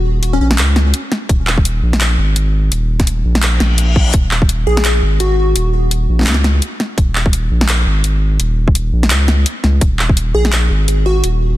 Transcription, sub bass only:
0.00 0.40 D#1 loud
0.41 0.60 A#1 loud
0.58 0.93 C#2 medium
1.29 1.82 D#1 loud
1.83 2.17 A#1 loud
2.18 2.71 G#1 loud
2.71 3.24 D#1 loud
3.25 3.59 A#1 medium
3.61 4.13 A#1 loud
4.14 4.66 D#1 loud
4.67 5.01 A#1 loud
5.02 5.55 G#1 loud
5.56 6.08 D#1 loud
6.09 6.29 A#1 loud
6.27 6.61 C#2 medium
6.98 7.50 D#1 loud
7.51 7.85 A#1 loud
7.86 8.39 G#1 loud
8.40 8.92 D#1 loud
8.93 9.12 A#1 loud
9.10 9.45 C#2 medium
9.64 9.80 C#2 medium
9.81 10.34 D#1 loud
10.35 10.69 A#1 loud
10.70 11.23 G#1 loud
11.24 11.57 D#1 loud

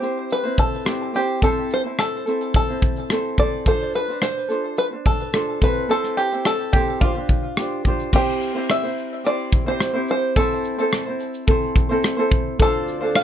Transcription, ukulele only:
0.00 0.44 C4 soft
0.00 0.44 E4 medium
0.00 0.43 G4 soft
0.00 0.42 C5 soft
0.43 0.86 C4 soft
0.43 0.87 E4 medium
0.43 0.86 C5 medium
0.85 1.14 C4 medium
0.85 1.15 E4 medium
0.85 1.12 G4 medium
0.85 1.15 C5 medium
1.14 1.42 C4 medium
1.14 1.42 E4 soft
1.14 1.42 G4 medium
1.14 1.42 C5 medium
1.42 1.85 C4 medium
1.42 1.85 E4 medium
1.42 1.83 A4 medium
1.42 1.83 C5 medium
1.84 2.26 C4 soft
1.84 2.27 E4 soft
1.84 2.25 C5 soft
2.26 2.69 C4 medium
2.26 2.69 E4 medium
2.26 2.68 A4 medium
2.26 2.67 C5 soft
2.68 3.11 C4 soft
2.68 3.11 E4 soft
2.68 3.10 C5 soft
3.11 3.39 C4 soft
3.11 3.39 E4 medium
3.11 3.38 A4 medium
3.11 3.40 C5 medium
3.39 3.67 C4 medium
3.39 3.68 E4 medium
3.39 3.65 A4 medium
3.39 3.66 C5 medium
3.67 4.09 D4 medium
3.67 4.09 F4 medium
3.67 4.08 A4 medium
3.67 4.07 C5 medium
4.08 4.49 D4 soft
4.08 4.50 C5 soft
4.48 4.92 D4 soft
4.48 4.92 F4 medium
4.48 4.91 A4 medium
4.48 4.90 C5 medium
4.91 5.33 D4 soft
4.91 5.33 C5 medium
5.33 5.62 D4 medium
5.33 5.63 F4 medium
5.33 5.60 A4 soft
5.33 5.63 C5 medium
5.61 5.89 C4 medium
5.61 5.89 E4 medium
5.61 5.88 A4 medium
5.61 5.90 C5 medium
5.89 6.32 C4 medium
5.89 6.32 E4 medium
5.89 6.31 A4 medium
5.89 6.30 C5 medium
6.31 6.74 C4 soft
6.31 6.74 E4 soft
6.31 6.73 C5 soft
6.74 7.02 C4 medium
6.74 7.03 E4 medium
6.74 7.02 A4 soft
6.74 7.01 C5 medium
7.01 7.16 D4 medium
7.01 7.15 F4 medium
7.01 7.14 G4 medium
7.01 7.13 C5 medium
7.15 7.57 D4 soft
7.15 7.57 C5 medium
7.57 7.85 D4 medium
7.57 7.86 F4 medium
7.57 7.84 G4 medium
7.57 7.87 C5 medium
7.85 8.13 D4 medium
7.85 8.14 F4 medium
7.85 8.12 G4 medium
7.85 8.14 C5 medium
8.13 8.55 C4 medium
8.13 8.54 E4 medium
8.13 8.55 G4 medium
8.13 8.54 C5 medium
8.55 8.84 C4 medium
8.55 8.83 E4 medium
8.55 8.84 G4 soft
8.55 8.82 C5 medium
8.83 9.24 C4 soft
8.83 9.25 E4 soft
8.83 9.25 C5 medium
9.24 9.66 C4 medium
9.24 9.66 E4 medium
9.24 9.66 G4 medium
9.24 9.65 C5 medium
9.66 9.94 C4 medium
9.66 9.94 E4 medium
9.66 9.94 G4 medium
9.66 9.92 C5 medium
9.94 10.36 C4 medium
9.94 10.37 E4 medium
9.94 10.37 G4 medium
9.94 10.36 C5 medium
10.36 10.79 C4 medium
10.36 10.78 E4 medium
10.36 10.78 A4 medium
10.36 10.77 C5 medium
10.78 11.07 C4 medium
10.78 11.07 E4 medium
10.78 11.05 A4 medium
10.78 11.04 C5 medium
11.06 11.48 C4 soft
11.06 11.49 E4 medium
11.06 11.47 C5 medium
11.47 11.90 C4 medium
11.47 11.89 E4 medium
11.47 11.89 A4 medium
11.47 11.88 C5 medium
11.89 12.18 C4 medium
11.89 12.17 E4 medium
11.89 12.18 A4 medium
11.89 12.16 C5 medium
12.17 12.60 C4 medium
12.17 12.60 E4 medium
12.17 12.58 A4 medium
12.17 12.59 C5 medium
12.59 13.01 D4 medium
12.59 13.00 F4 medium
12.59 13.01 A4 medium
12.59 12.99 C5 medium
13.01 13.23 D4 medium
13.01 13.23 F4 medium
13.01 13.23 A4 medium
13.01 13.23 C5 medium

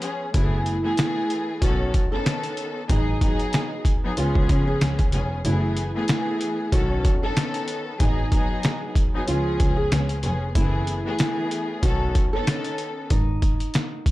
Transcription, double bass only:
0.34 0.76 F#1 loud
1.62 1.88 B1 loud
2.90 3.31 G#1 loud
4.17 4.32 C#2 loud
4.35 4.49 C#2 medium
4.50 4.76 C#3 loud
4.81 5.07 C#2 loud
5.13 5.39 F1 medium
5.45 5.86 F#1 loud
6.72 6.99 B1 loud
8.00 8.42 G#1 loud
9.28 9.54 C#2 medium
9.60 9.86 C#2 medium
9.92 10.18 C#2 medium
10.24 10.50 F1 medium
10.56 10.97 F#1 loud
11.83 12.10 B1 loud
13.11 13.52 G#1 loud

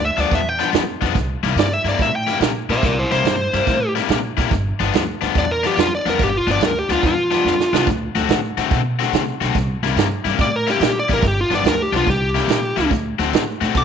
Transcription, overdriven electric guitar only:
0.17 0.40 G2 medium
0.17 0.40 F3 medium
0.17 0.40 B3 medium
0.17 0.39 D4 medium
0.59 0.82 G2 medium
0.59 0.82 F3 medium
0.59 0.81 B3 medium
0.59 0.81 D4 medium
1.01 1.15 G2 medium
1.01 1.15 F3 medium
1.01 1.15 B3 medium
1.01 1.15 D4 medium
1.43 1.66 C3 medium
1.43 1.66 G3 medium
1.43 1.65 A#3 medium
1.43 1.65 E4 medium
1.85 2.08 C3 medium
1.85 2.08 G3 medium
1.85 2.07 A#3 medium
1.85 2.07 E4 medium
2.27 2.50 C3 medium
2.27 2.50 G3 medium
2.27 2.49 A#3 medium
2.27 2.49 E4 medium
2.69 2.92 C3 medium
2.69 2.92 G3 medium
2.69 2.92 A#3 medium
2.69 2.91 E4 medium
3.11 3.34 C3 medium
3.11 3.34 G3 medium
3.11 3.34 A#3 medium
3.11 3.33 E4 medium
3.54 3.76 C3 medium
3.54 3.76 G3 medium
3.54 3.76 A#3 medium
3.54 3.76 E4 medium
3.95 4.18 C3 medium
3.95 4.18 G3 medium
3.95 4.18 A#3 medium
3.95 4.18 E4 medium
4.37 4.51 C3 medium
4.37 4.51 G3 medium
4.37 4.51 A#3 medium
4.37 4.51 E4 medium
4.80 5.02 G2 medium
4.80 5.02 F3 medium
4.80 5.02 B3 medium
4.80 5.02 D4 medium
5.21 5.44 G2 medium
5.21 5.44 F3 medium
5.21 5.44 B3 medium
5.21 5.43 D4 medium
5.64 5.86 G2 medium
5.64 5.86 F3 medium
5.64 5.86 B3 medium
5.64 5.86 D4 loud
6.06 6.28 G2 medium
6.06 6.28 F3 medium
6.06 6.28 B3 medium
6.06 6.28 D4 medium
6.47 6.70 G2 medium
6.47 6.70 F3 medium
6.47 6.70 B3 medium
6.47 6.70 D4 loud
6.90 7.12 G2 medium
6.90 7.12 F3 medium
6.90 7.12 B3 medium
6.90 7.12 D4 medium
7.31 7.54 G2 medium
7.31 7.54 F3 medium
7.31 7.54 B3 medium
7.31 7.53 D4 medium
7.73 7.87 G2 medium
7.73 7.87 F3 medium
7.73 7.87 B3 medium
7.73 7.87 D4 medium
8.15 8.38 D3 medium
8.15 8.38 A3 medium
8.15 8.38 C4 medium
8.15 8.38 F#4 medium
8.57 8.80 D3 medium
8.57 8.80 A3 medium
8.57 8.80 C4 medium
8.57 8.80 F#4 medium
8.99 9.22 D3 medium
8.99 9.22 A3 medium
8.99 9.22 C4 medium
8.99 9.21 F#4 medium
9.41 9.55 D3 medium
9.41 9.55 A3 medium
9.41 9.55 C4 medium
9.41 9.55 F#4 medium
9.83 10.06 C3 medium
9.83 10.06 G3 medium
9.83 10.06 A#3 medium
9.83 10.05 E4 medium
10.24 10.48 C3 medium
10.24 10.48 G3 medium
10.24 10.47 A#3 medium
10.24 10.47 E4 medium
10.67 10.90 C3 medium
10.67 10.90 G3 medium
10.67 10.90 A#3 medium
10.67 10.89 E4 medium
11.09 11.23 C3 medium
11.09 11.23 G3 medium
11.09 11.23 A#3 medium
11.09 11.23 E4 medium
11.50 11.74 G2 medium
11.50 11.73 F3 medium
11.50 11.73 B3 medium
11.50 11.73 D4 medium
11.93 12.07 G2 medium
11.93 12.07 F3 medium
11.93 12.07 B3 medium
11.93 12.07 D4 medium
12.35 12.58 C3 medium
12.35 12.58 G3 medium
12.35 12.57 A#3 medium
12.35 12.57 E4 medium
12.76 12.91 C3 medium
12.76 12.91 G3 medium
12.76 12.91 A#3 medium
12.76 12.90 E4 medium
13.19 13.42 D3 medium
13.19 13.41 A3 medium
13.19 13.41 C4 medium
13.19 13.41 F#4 medium
13.61 13.84 D3 medium
13.61 13.83 A3 medium
13.61 13.83 C4 medium
13.61 13.83 F#4 medium

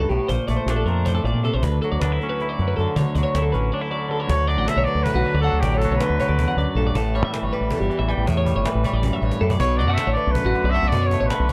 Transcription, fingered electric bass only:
0.10 0.18 B1 medium
0.29 0.38 A#1 medium
0.48 0.57 A#1 medium
0.66 0.83 A#1 medium
0.85 1.18 F2 medium
1.24 1.32 A1 medium
1.34 1.50 A#2 medium
1.54 1.62 A#1 medium
1.63 1.79 D2 medium
1.92 2.00 D2 medium
2.02 2.18 D2 medium
2.59 2.75 F#2 medium
2.78 2.86 F#2 medium
2.96 3.04 D3 medium
3.15 3.23 D2 medium
3.35 3.51 D2 medium
3.54 3.70 A1 medium
4.29 4.57 D2 medium
4.57 4.66 A1 medium
4.76 4.85 B1 medium
4.95 5.03 D2 medium
5.15 5.23 B1 medium
5.34 5.50 D2 medium
5.53 5.61 D2 medium
5.63 5.87 A1 medium
5.90 5.99 B1 medium
6.10 6.18 D2 medium
6.29 6.45 D2 medium
6.57 6.65 D2 medium
6.75 6.92 A#1 medium
6.95 7.23 A1 medium
7.23 7.31 E2 medium
7.42 7.50 G1 medium
7.61 7.69 A1 medium
7.80 7.88 G1 medium
7.99 8.15 A1 medium
8.17 8.26 A1 medium
8.28 8.52 E2 medium
8.56 8.64 G1 medium
8.75 8.83 A1 medium
8.93 9.09 A1 medium
9.22 9.30 A1 medium
9.41 9.57 F#2 medium
9.60 9.88 B1 medium
9.88 9.96 F#2 medium
10.07 10.15 A1 medium
10.27 10.35 B1 medium
10.44 10.53 A1 medium
10.64 10.80 B1 medium
10.83 10.91 B1 medium
10.92 11.16 F#2 medium
11.21 11.29 A1 medium
11.39 11.48 B1 medium

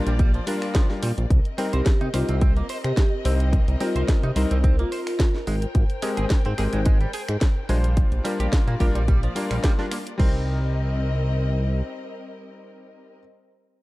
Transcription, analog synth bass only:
0.07 0.40 A#1 loud
1.03 1.12 A#2 medium
1.18 1.26 A#1 loud
1.30 1.40 C2 loud
1.73 1.82 C2 medium
2.01 2.09 C3 medium
2.14 2.23 C2 medium
2.29 2.62 C2 loud
2.85 2.93 C3 medium
3.25 3.59 C2 loud
3.68 3.76 C2 loud
3.95 4.04 C2 medium
4.23 4.31 C3 medium
4.36 4.45 C2 medium
4.51 4.84 C2 loud
5.47 5.66 G#1 medium
5.75 5.84 G#1 loud
6.18 6.26 G#1 medium
6.46 6.54 G#2 medium
6.58 6.68 G#1 medium
6.73 7.06 G#1 loud
7.29 7.37 G#2 medium
7.69 8.03 A#1 loud
8.12 8.20 A#1 loud
8.40 8.48 A#1 medium
8.67 8.76 A#2 medium
8.80 8.90 A#1 medium
8.95 9.28 A#1 loud
9.51 9.59 A#1 loud
10.19 11.82 C2 medium

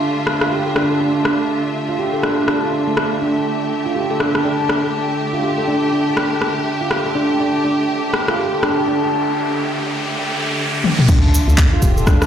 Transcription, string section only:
0.00 11.05 D3 medium
0.00 11.05 A3 medium
0.00 3.21 F4 medium
0.00 11.05 E5 medium
3.22 11.08 G4 medium
11.09 12.27 D3 medium
11.09 12.27 A3 medium
11.09 12.27 F4 medium
11.09 12.27 E5 medium

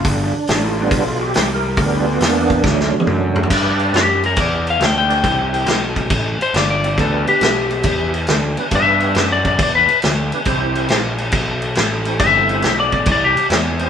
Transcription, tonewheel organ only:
0.09 0.63 D4 medium
0.63 0.68 E4 medium
0.67 1.21 F4 loud
0.81 1.04 G3 medium
0.81 1.04 B3 medium
0.81 1.04 D4 medium
1.20 1.23 F#4 medium
1.25 1.51 G4 medium
1.54 1.94 A#4 medium
1.79 2.06 G3 medium
1.79 2.62 B3 soft
1.79 2.06 D4 medium
1.95 1.99 E4 medium
1.99 2.24 F4 medium
2.27 2.64 A#3 medium
2.27 2.67 D4 medium
2.67 3.48 F#3 medium
2.67 3.49 A3 medium
2.67 3.49 D4 medium
3.51 4.06 D4 medium
3.51 4.07 G4 medium
3.51 4.07 B4 medium
3.51 4.07 D5 medium
5.09 5.18 D4 medium
5.09 5.18 G4 medium
5.09 5.18 B4 medium
5.09 5.18 D5 medium
5.23 5.79 C4 medium
5.23 5.79 E4 medium
5.23 5.79 G4 medium
5.23 5.79 C5 medium
6.83 6.92 C4 medium
6.83 6.93 E4 medium
6.83 6.92 G4 medium
6.83 6.93 D5 medium
6.97 7.53 B3 medium
6.97 7.53 D4 medium
6.97 7.53 G4 medium
6.97 7.53 B4 medium
8.58 8.66 B3 loud
8.58 8.66 D4 medium
8.58 8.67 G4 medium
8.58 8.67 B4 loud
8.73 9.28 B3 medium
8.73 9.28 D4 medium
8.73 9.28 G4 medium
8.73 9.29 B4 medium
10.33 10.41 B3 medium
10.33 10.41 D4 medium
10.33 10.41 G4 medium
10.33 10.41 B4 medium
10.46 11.01 C4 medium
10.46 11.02 E4 medium
10.46 11.02 G4 medium
10.46 11.02 C5 loud
12.06 12.14 C4 medium
12.06 12.15 E4 medium
12.06 12.15 G4 medium
12.06 12.16 C5 loud
12.18 12.75 C4 medium
12.18 12.76 E4 medium
12.18 12.75 G4 medium
12.18 12.75 C5 medium
13.79 13.88 C4 medium
13.79 13.88 E4 medium
13.79 13.89 G4 medium
13.79 13.89 C5 loud

